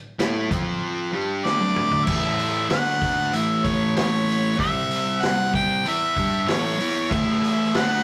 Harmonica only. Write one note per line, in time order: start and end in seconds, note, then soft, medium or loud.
1.44 2.06 D5 medium
2.04 2.69 E5 loud
2.69 3.37 F#5 loud
3.35 3.66 E5 loud
3.65 3.96 C#5 medium
3.96 4.55 C#5 medium
4.60 5.24 E5 loud
5.23 5.54 F#5 loud
5.55 5.84 G5 loud
5.88 6.51 E5 loud
6.50 7.14 C#5 loud
7.12 7.79 E5 loud
7.77 8.03 F#5 loud